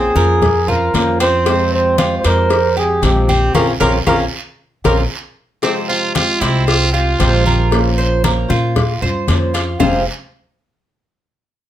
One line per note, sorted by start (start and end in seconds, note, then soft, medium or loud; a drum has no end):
0.00 0.15 A#3 medium
0.00 0.15 C4 medium
0.00 0.15 C#4 medium
0.00 0.15 F4 medium
0.00 0.71 G#4 loud
0.00 0.14 C5 medium
0.16 0.90 F2 loud
0.16 0.41 A#3 medium
0.16 0.41 C#4 medium
0.16 0.41 F4 medium
0.16 0.67 A#4 medium
0.16 0.41 C5 medium
0.16 high conga medium
0.16 short guiro medium
0.42 muted nylon-string guitar stroke medium
0.42 cowbell loud
0.42 high conga soft
0.42 low conga medium
0.42 long guiro medium
0.67 0.94 C#4 soft
0.67 1.19 F4 medium
0.67 0.93 F4 soft
0.67 1.21 A#4 loud
0.67 0.93 C5 medium
0.67 high conga soft
0.67 low conga medium
0.94 2.18 F2 loud
0.94 1.19 F3 medium
0.94 1.19 A#3 medium
0.94 1.20 C#4 medium
0.94 1.19 F4 medium
0.94 1.18 C5 medium
0.94 cowbell medium
0.94 high conga medium
0.94 short guiro medium
1.19 1.45 C4 loud
1.19 1.46 C#4 soft
1.19 1.45 F4 medium
1.19 1.45 C5 medium
1.19 1.69 C5 loud
1.19 cowbell medium
1.19 high conga soft
1.19 short guiro medium
1.46 1.97 C3 medium
1.46 1.96 F3 medium
1.46 1.97 G#3 medium
1.46 1.97 C4 medium
1.46 1.98 C4 medium
1.46 1.98 G4 medium
1.46 cowbell loud
1.46 high conga soft
1.46 long guiro medium
1.72 2.15 C5 loud
1.72 high conga soft
1.97 2.23 F3 medium
1.97 2.23 G#3 medium
1.97 2.23 C4 medium
1.97 2.24 F4 medium
1.97 2.22 G4 medium
1.97 cowbell medium
1.97 high conga loud
1.97 short guiro medium
2.18 2.28 C5 medium
2.23 2.99 F2 medium
2.23 2.49 F3 medium
2.23 2.49 G#3 medium
2.23 2.50 C4 medium
2.23 2.49 G4 medium
2.23 2.77 A#4 loud
2.23 2.75 C5 medium
2.23 cowbell medium
2.23 high conga soft
2.23 short guiro medium
2.49 muted nylon-string guitar stroke medium
2.49 cowbell loud
2.49 high conga soft
2.49 long guiro medium
2.76 3.02 G#3 soft
2.76 3.02 C4 soft
2.76 3.02 G4 medium
2.76 3.27 G4 medium
2.76 3.05 G#4 loud
2.76 high conga soft
3.02 3.51 A#1 loud
3.02 3.27 C3 medium
3.02 3.28 F3 medium
3.02 3.28 G#3 medium
3.02 3.28 C4 medium
3.02 3.54 G4 medium
3.02 3.27 G4 medium
3.02 cowbell medium
3.02 high conga medium
3.02 short guiro medium
3.28 3.55 G#3 soft
3.28 3.54 C4 loud
3.28 3.54 C4 medium
3.28 3.54 G4 medium
3.28 high conga medium
3.28 short guiro medium
3.55 3.74 A#1 loud
3.55 3.72 C4 medium
3.55 3.72 C#4 loud
3.55 3.72 F4 medium
3.55 3.72 F4 loud
3.55 3.67 A#4 medium
3.55 3.72 A#4 medium
3.55 cowbell loud
3.55 high conga loud
3.55 long guiro loud
3.80 4.00 A#1 loud
3.80 3.98 C4 loud
3.80 3.98 C#4 loud
3.80 3.97 C#4 medium
3.80 3.97 F4 medium
3.80 3.98 F4 loud
3.80 3.97 A#4 loud
3.80 3.93 A#4 loud
3.80 cowbell loud
3.80 high conga medium
3.80 long guiro loud
4.07 4.26 A#1 loud
4.07 4.24 C4 loud
4.07 4.23 C#4 loud
4.07 4.24 C#4 loud
4.07 4.24 F4 medium
4.07 4.23 F4 loud
4.07 4.20 A#4 loud
4.07 4.24 A#4 medium
4.07 cowbell loud
4.07 high conga loud
4.07 long guiro loud
4.84 5.04 A#1 loud
4.84 5.01 C4 loud
4.84 5.01 C#4 loud
4.84 5.02 C#4 medium
4.84 5.01 F4 loud
4.84 5.02 F4 medium
4.84 5.02 A#4 medium
4.84 4.98 A#4 medium
4.84 cowbell loud
4.84 high conga loud
4.84 long guiro loud
5.62 6.14 C3 medium
5.62 6.14 F3 medium
5.62 6.15 G#3 medium
5.62 5.75 C4 medium
5.62 5.89 C4 medium
5.62 6.15 C4 medium
5.62 6.15 G4 medium
5.62 cowbell loud
5.62 high conga soft
5.62 long guiro medium
5.89 6.13 F4 loud
5.89 6.40 F4 medium
5.89 high conga soft
6.15 6.40 F3 soft
6.15 6.41 G#3 medium
6.15 6.40 C4 medium
6.15 6.42 F4 loud
6.15 6.40 G4 medium
6.15 cowbell medium
6.15 high conga loud
6.15 short guiro medium
6.41 7.16 C2 loud
6.41 6.66 F3 medium
6.41 6.66 G#3 medium
6.41 6.92 C4 loud
6.41 6.67 C4 medium
6.41 6.67 E4 loud
6.41 6.66 G4 medium
6.41 cowbell medium
6.41 high conga soft
6.41 short guiro medium
6.67 6.92 F4 loud
6.67 muted nylon-string guitar stroke medium
6.67 cowbell loud
6.67 high conga soft
6.67 long guiro medium
6.93 7.19 G#3 soft
6.93 7.19 C4 soft
6.93 7.94 F4 loud
6.93 7.19 F4 medium
6.93 7.18 G4 medium
6.93 high conga soft
7.19 8.44 A#1 loud
7.19 7.44 C3 medium
7.19 7.45 F3 medium
7.19 7.45 G#3 medium
7.19 7.45 C4 medium
7.19 7.44 G4 medium
7.19 7.45 C5 medium
7.19 cowbell medium
7.19 high conga medium
7.19 short guiro medium
7.45 7.71 G#3 soft
7.45 7.71 C4 soft
7.45 7.71 G4 medium
7.45 7.97 A#4 medium
7.45 high conga medium
7.45 short guiro medium
7.70 8.22 F3 medium
7.70 8.22 A#3 medium
7.70 8.23 C#4 medium
7.70 8.23 F4 medium
7.70 8.23 C5 medium
7.70 cowbell loud
7.70 long guiro medium
7.98 8.23 C5 medium
7.98 high conga soft
8.24 8.49 A#3 medium
8.24 8.49 C#4 medium
8.24 8.48 F4 medium
8.24 8.49 A#4 medium
8.24 8.47 C5 medium
8.24 cowbell medium
8.24 high conga loud
8.24 short guiro medium
8.48 8.99 A#2 loud
8.48 8.75 A#3 medium
8.48 8.75 C#4 medium
8.48 8.75 F4 medium
8.48 9.01 F4 medium
8.48 8.74 C5 medium
8.48 high conga medium
8.48 short guiro medium
8.76 muted nylon-string guitar stroke medium
8.76 cowbell loud
8.76 high conga soft
8.76 low conga medium
8.76 long guiro medium
9.02 9.27 G2 medium
9.02 9.28 C#4 soft
9.02 9.28 F4 soft
9.02 9.27 C5 medium
9.02 9.53 C5 medium
9.02 high conga soft
9.02 low conga medium
9.28 9.74 F2 loud
9.28 9.53 F3 medium
9.28 9.53 A#3 medium
9.28 9.53 C#4 medium
9.28 9.54 F4 medium
9.28 9.52 C5 medium
9.28 cowbell medium
9.28 high conga medium
9.28 short guiro medium
9.53 9.80 C#4 soft
9.53 9.79 F4 medium
9.53 9.80 F4 soft
9.53 9.79 C5 medium
9.53 cowbell medium
9.53 high conga soft
9.53 short guiro medium
9.79 10.05 F1 medium
9.79 10.01 F2 medium
9.79 10.01 C3 medium
9.79 10.01 F3 medium
9.79 10.01 G#3 medium
9.79 10.02 C4 medium
9.79 10.04 F4 medium
9.79 10.02 G4 medium
9.79 10.04 G#4 medium
9.79 10.04 C5 medium
9.79 10.05 F5 medium
9.79 low bongo loud
9.79 low conga loud
9.79 long guiro loud